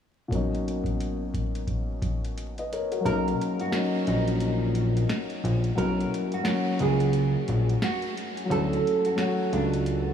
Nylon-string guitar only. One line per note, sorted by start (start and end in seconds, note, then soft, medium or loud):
3.06 3.56 A#4 loud
3.61 4.05 F#4 medium
4.08 5.74 D#4 medium
5.78 6.29 A#4 loud
6.34 6.78 F#4 medium
6.82 7.79 G#4 medium
7.84 8.14 F#4 medium
8.52 9.02 A4 medium
9.06 9.50 F#4 medium
9.54 10.13 D4 medium